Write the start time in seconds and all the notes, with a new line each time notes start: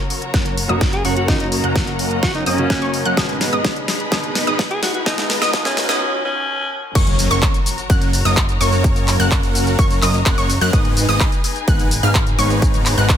Already playing: C#3 F#3 A#3 F#4 A#4 C#5 A#5, riser
0.10 open hi-hat
0.22 closed hi-hat
0.34 F#1 F#3 A#3 C#4 A#4 F#5 F#6, kick, snare, closed hi-hat
0.46 closed hi-hat
0.57 open hi-hat
0.68 F#1 C#3 F#3 A#3 C#4 F#4 A#4 D#5 D#6, closed hi-hat
0.81 kick, snare, closed hi-hat
0.93 G#4, closed hi-hat
1.05 F#1 F#3 A#3 C#4 F#4 A#4 C#5 C#6, open hi-hat
1.17 F#4, closed hi-hat
1.27 C#3 F#3 A#3 D#4 F#4 D#5, kick, snare, closed hi-hat
1.40 D#4, closed hi-hat
1.52 open hi-hat
1.64 F#1 F#3 A#3 C#4 A#4 F#5 F#6, closed hi-hat
1.76 kick, snare, closed hi-hat
1.87 closed hi-hat
1.99 open hi-hat
2.11 closed hi-hat
2.23 F#1 F#3 A#3 C#4 F#4 A#4 C#5 C#6, kick, snare, closed hi-hat
2.35 D#4, closed hi-hat
2.46 F#1 F#3 A#3 C#4 A#4 D#5 D#6, open hi-hat
2.57 C#3 F#3 A#3 F#4, closed hi-hat
2.70 F#1 F#3 A#3 C#4 A#4 F#5 F#6, kick, snare, closed hi-hat
2.82 F#1 F#3 A#3 C#4 A#4 C#5 C#6, closed hi-hat
2.94 open hi-hat
3.05 F#2 F#3 A#3 C#4 A#4 F#5 F#6, closed hi-hat
3.16 G#1 B2 D#3 G#3 B3 D#4 G#4 B4 D#5 B5 D#6, kick, snare, closed hi-hat
3.29 closed hi-hat
3.41 snare, open hi-hat
3.53 G#1 G#3 B3 D#4 B4 D#5 D#6, closed hi-hat
3.65 kick, snare, closed hi-hat
3.76 closed hi-hat
3.88 snare, open hi-hat
4.00 closed hi-hat
4.11 G#1 B2 D#3 G#3 B3 D#4 B4 D#5 D#6, kick, snare, closed hi-hat
4.24 closed hi-hat
4.35 snare, open hi-hat
4.47 G#1 G#3 B3 D#4 B4 D#5 D#6, closed hi-hat
4.59 kick, snare, closed hi-hat
4.71 G#4, closed hi-hat
4.83 F#4, snare, open hi-hat
4.94 F#4, closed hi-hat
5.05 G#1 B2 D#3 G#3 B3 D#4 B4 D#5 A#5 D#6, kick, snare, closed hi-hat
5.18 D#4, snare, closed hi-hat
5.30 snare, open hi-hat
5.42 G#1 G#3 B3 D#4 B4 D#5 D#6, snare, closed hi-hat
5.52 G#1 B2 D#3 G#3 B3 D#4 B4 D#5 D#6, kick, snare, closed hi-hat
5.65 C#4, snare, closed hi-hat
5.77 snare, open hi-hat
5.89 G#1 G#3 B3 C#4 D#4 B4 D#5 D#6, snare, closed hi-hat
6.24 C#4
6.95 F#1 F#3 A#3 C#4 F#4 A#4 C#5 A#5 C#6, kick, closed hi-hat, crash, impact, shaker
7.07 closed hi-hat
7.19 open hi-hat, shaker
7.31 F#1 F#3 A#3 C#4 A#4 C#5 C#6, closed hi-hat, shaker
7.42 kick, clap, closed hi-hat, shaker
7.54 closed hi-hat, shaker
7.66 open hi-hat, shaker
7.78 closed hi-hat, shaker
7.90 F#1 F#3 A#3 C#4 A#4 F#5 F#6, kick, closed hi-hat, shaker
8.02 closed hi-hat, shaker
8.13 open hi-hat, shaker
8.25 F#1 F#3 A#3 C#4 A#4 D#5 D#6, closed hi-hat, shaker
8.37 kick, clap, closed hi-hat, shaker
8.49 closed hi-hat, shaker
8.61 F#1 F#3 A#3 C#4 A#4 C#5 C#6, open hi-hat, shaker
8.72 closed hi-hat, shaker
8.84 kick, closed hi-hat, shaker
8.96 closed hi-hat, shaker
9.08 clap, open hi-hat, shaker
9.20 F#1 F#3 A#3 C#4 A#4 F#5 F#6, closed hi-hat, shaker
9.31 kick, clap, closed hi-hat, shaker
9.43 closed hi-hat, shaker
9.55 open hi-hat, shaker
9.67 closed hi-hat, shaker
9.79 F#1 F#3 A#3 C#4 A#4 C#5 C#6, kick, closed hi-hat, shaker
9.91 closed hi-hat, shaker
10.02 F#1 F#3 A#3 C#4 A#4 D#5 D#6, clap, open hi-hat, shaker
10.14 closed hi-hat, shaker
10.26 F#1 F#3 A#3 C#4 A#4 F#5 F#6, kick, clap, closed hi-hat, shaker
10.38 F#1 F#3 A#3 C#4 A#4 C#5 C#6, closed hi-hat, shaker
10.50 open hi-hat, shaker
10.61 F#2 F#3 A#3 C#4 A#4 F#5 F#6, closed hi-hat, shaker
10.73 G#1 G#3 B3 D#4 G#4 B4 D#5 G#5 D#6, kick, closed hi-hat, shaker
10.85 closed hi-hat
10.97 open hi-hat, shaker
11.09 G#1 G#3 B3 D#4 B4 D#5 D#6, closed hi-hat, shaker
11.20 kick, clap, closed hi-hat, shaker
11.32 closed hi-hat, shaker
11.44 open hi-hat, shaker
11.56 closed hi-hat, shaker
11.68 G#1 G#3 B3 D#4 B4 F#5 F#6, kick, closed hi-hat, shaker
11.79 closed hi-hat, shaker
11.91 open hi-hat, shaker
12.03 G#1 G#3 B3 D#4 B4 F5 F6, closed hi-hat, shaker
12.15 kick, clap, closed hi-hat, shaker
12.27 closed hi-hat, shaker
12.38 G#1 G#3 B3 D#4 B4 C#5 C#6, open hi-hat, shaker
12.50 closed hi-hat, shaker
12.62 A#5, kick, closed hi-hat, shaker
12.74 closed hi-hat, shaker
12.86 clap, open hi-hat, shaker
12.98 G#1 G#3 B3 D#4 B4 F#5 F#6, closed hi-hat, shaker
13.09 kick, clap, closed hi-hat, shaker